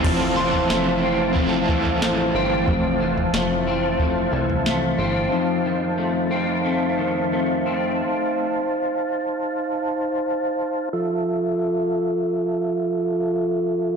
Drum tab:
CC |x---------------|----------------|----------------|----------------|
SD |----o-------o---|----o-------o---|----------------|----------------|
FT |o--o----o--o----|o--o----o--o----|----------------|----------------|
BD |o-------o-o-----|o-------o-------|----------------|----------------|

CC |----------------|
SD |----------------|
FT |----------------|
BD |----------------|